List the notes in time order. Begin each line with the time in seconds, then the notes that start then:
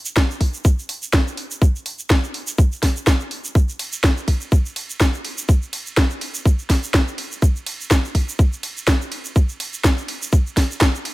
0.05 shaker
0.16 kick, snare, shaker
0.31 shaker
0.41 kick, open hi-hat
0.54 shaker
0.65 kick, shaker
0.79 shaker
0.89 open hi-hat
1.02 shaker
1.13 kick, snare, shaker
1.27 shaker
1.37 open hi-hat
1.51 shaker
1.62 kick, shaker
1.76 shaker
1.86 open hi-hat
1.99 shaker
2.10 kick, snare, shaker
2.24 shaker
2.34 open hi-hat
2.47 shaker
2.58 kick, shaker
2.72 shaker
2.83 kick, snare, open hi-hat
2.96 shaker
3.07 kick, snare, shaker
3.20 shaker
3.31 open hi-hat
3.45 shaker
3.55 kick, shaker
3.69 shaker
3.79 open hi-hat, ride
3.93 shaker
4.04 kick, snare, shaker
4.17 shaker
4.28 kick, open hi-hat, ride
4.41 shaker
4.52 kick, shaker
4.66 shaker
4.76 open hi-hat, ride
4.90 shaker
5.00 kick, snare, shaker
5.14 shaker
5.25 open hi-hat, ride
5.38 shaker
5.49 kick, shaker
5.63 shaker
5.73 open hi-hat, ride
5.86 shaker
5.97 kick, snare, shaker
6.10 shaker
6.21 open hi-hat, ride
6.34 shaker
6.45 kick, shaker
6.59 shaker
6.70 kick, snare, open hi-hat, ride
6.83 shaker
6.94 kick, snare, shaker
7.08 shaker
7.18 open hi-hat, ride
7.32 shaker
7.42 kick, shaker
7.56 shaker
7.66 open hi-hat, ride
7.81 shaker
7.91 kick, snare, shaker
8.05 shaker
8.15 kick, open hi-hat, ride
8.29 shaker
8.39 kick, shaker
8.53 shaker
8.63 open hi-hat, ride
8.77 shaker
8.87 kick, snare, shaker
9.01 shaker
9.12 open hi-hat, ride
9.25 shaker
9.36 kick, shaker
9.49 shaker
9.60 open hi-hat, ride
9.73 shaker
9.84 kick, snare, shaker
9.98 shaker
10.08 open hi-hat, ride
10.22 shaker
10.32 kick, shaker
10.47 shaker
10.57 kick, snare, open hi-hat, ride
10.71 shaker
10.81 kick, snare, clap, shaker
10.95 shaker
11.05 open hi-hat, ride